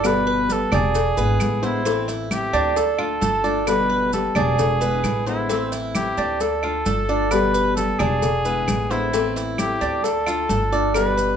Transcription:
Already playing: G1 D5
0.03 B2 D3 G3 B3 G4 B4, cowbell, high conga, claves, maracas
0.27 B4, high conga
0.49 D3 G3 B3 G4 A4, cowbell, high conga, maracas
0.72 E1 D4 G#4, cowbell, high conga, low conga, claves, maracas
0.95 muted nylon-string guitar stroke, cowbell, high conga, maracas
1.17 G#1 D3 G#3 B3 E4 B4, high conga, maracas
1.40 A1 D3 G#3 B3 E4, cowbell, high conga, claves, maracas
1.62 D3 G#3 B3 E4 C5, cowbell, high conga, maracas
1.85 E3 A3 C4 E4, cowbell, high conga, maracas
2.08 E4, cowbell, high conga, maracas
2.30 E3 A3 C4 E4 G4, cowbell, high conga, claves, maracas
2.53 D2 D4, cowbell, high conga, maracas
2.76 A4, muted nylon-string guitar stroke, cowbell, high conga, maracas
2.98 A3 D4 F4, high conga, claves
3.21 G1 D3 A3 D4 F4 A4, cowbell, high conga, maracas
3.44 A3 D4 F4 D5, high conga, maracas
3.67 B2 D3 G3 B3 G4 B4, cowbell, high conga, claves, maracas
3.90 B4, high conga
4.12 D3 G3 B3 G4 A4, cowbell, high conga, maracas
4.35 E1 D4 G#4, cowbell, high conga, low conga, claves, maracas
4.59 muted nylon-string guitar stroke, cowbell, high conga, low conga, maracas
4.81 D3 G#3 B3 E4 B4, high conga, maracas
5.03 A1 D3 G#3 B3 E4, cowbell, high conga, claves, maracas
5.26 D3 G#3 B3 E4 C5, cowbell, maracas
5.49 E3 A3 C4 E4, cowbell, high conga, maracas
5.72 E4, cowbell, high conga, maracas
5.95 E3 A3 C4 E4 G4, cowbell, high conga, claves, maracas
6.18 D2 D4, cowbell, high conga, maracas
6.40 A4, muted nylon-string guitar stroke, cowbell, high conga, maracas
6.63 A3 D4 F4, high conga, claves
6.86 G1 D3 A3 D4 F4 A4, cowbell, high conga, maracas
7.09 A3 D4 F4 D5, high conga, maracas
7.31 B2 D3 G3 B3 G4 B4, cowbell, high conga, claves, maracas
7.54 B4, high conga, maracas
7.76 D3 G3 B3 G4 A4, cowbell, high conga, maracas
7.99 E1 D4 G#4, cowbell, high conga, low conga, claves, maracas
8.22 muted nylon-string guitar stroke, cowbell, high conga, low conga, maracas
8.45 D3 G#3 B3 E4 B4, high conga, maracas
8.68 A1 D3 G#3 B3 E4, cowbell, high conga, claves, maracas
8.90 D3 G#3 B3 E4 C5, cowbell, high conga, maracas
9.13 E3 A3 C4 E4, cowbell, high conga, maracas
9.36 E4, cowbell, high conga, maracas
9.58 E3 A3 C4 E4 G4, cowbell, high conga, claves, maracas
9.81 D2 D4, cowbell, high conga, maracas
10.04 A4, muted nylon-string guitar stroke, cowbell, high conga, maracas
10.26 A3 D4 F4, high conga, claves, maracas
10.49 G1 D3 A3 D4 F4 A4, cowbell, high conga, maracas
10.72 A3 D4 F4 D5, high conga, maracas
10.94 B2 D3 G3 B3 G4 B4, cowbell, high conga, claves, maracas
11.17 B4, high conga, maracas

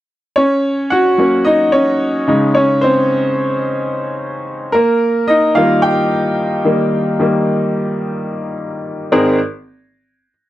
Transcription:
0.36 C#4 C#5
0.90 F#4 F#5
1.18 F#3 A#3 C#4
1.45 D#4 D#5
1.72 C#4 C#5
2.27 C#3 G#3 D#4
2.55 C#4 C#5
2.81 C4 C5
4.72 A#3 A#4
5.28 D#4 D#5
5.55 D#3 G3 A#3 F4 F5
5.82 G4 G5
6.65 D#3 G3 A#3
7.19 D#3 G3 A#3
9.12 G#1 C4 D#4 G#4 A#4

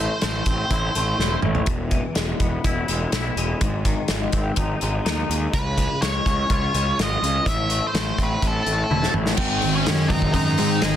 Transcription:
Already playing: A2 A3 C5
0.22 A1 A3 C5, snare, closed hi-hat
0.46 A1 C4, kick, closed hi-hat
0.71 A1 E4, kick, closed hi-hat
0.95 A1 A3, closed hi-hat
1.19 E1 E4, snare
1.42 A1 A3, mid tom
1.55 floor tom
1.66 E1 E2, kick, closed hi-hat
1.91 E3, kick, closed hi-hat
2.15 E1 G#3, snare, closed hi-hat
2.40 E1 B3, kick, closed hi-hat
2.64 E1 E4, kick, closed hi-hat
2.88 E1 G#3, closed hi-hat
3.12 B1 E4, snare, closed hi-hat
3.36 E1 G#3, closed hi-hat
3.61 G#1 G#2, kick, closed hi-hat
3.85 D#3, kick, closed hi-hat
4.08 G#1 G#3, snare, closed hi-hat
4.32 G#1 C4, kick, closed hi-hat
4.56 G#1 D#4, kick, closed hi-hat
4.81 G#1 G#3, closed hi-hat
5.05 D#2 D#4, snare, closed hi-hat
5.29 D#2 G#3, closed hi-hat
5.52 C#2 C#3 B4, kick, closed hi-hat
5.77 G#3, kick, closed hi-hat
6.01 C#2 G#3 C#5, snare, closed hi-hat
6.26 C#2 C#4, kick, closed hi-hat
6.50 C#2 F4 C#5, kick, closed hi-hat
6.74 C#2 G#3, closed hi-hat
6.99 G#1 F4 D#5, snare, closed hi-hat
7.22 C#2 G#3, closed hi-hat
7.45 A1 A2 E5, kick, closed hi-hat
7.70 A3, closed hi-hat
7.87 C5
7.94 A1 A3, snare, closed hi-hat
8.18 A1 C4, kick, closed hi-hat
8.23 B4
8.42 A1 E4, kick, closed hi-hat
8.47 A4
8.66 A1 A3, closed hi-hat
8.90 E1 E4, high tom
9.03 snare
9.14 A1 A3, mid tom
9.26 snare
9.37 G#1 G#2 D#3 G#3 C4 C5, kick, crash
9.62 G#1 G#2 D#3 C4, open hi-hat
9.75 C#4 C#5
9.86 F#2 G#2 D#3 G#3, snare, open hi-hat
10.08 F#1 G#2 D#3 C4 D#4 D#5, kick, open hi-hat
10.22 kick
10.33 F#2 G#2 D#3 D#4 D#5, kick, open hi-hat
10.58 G#2 D#3 C4, open hi-hat
10.82 G#1 G#2 D#3 G#4, snare, open hi-hat

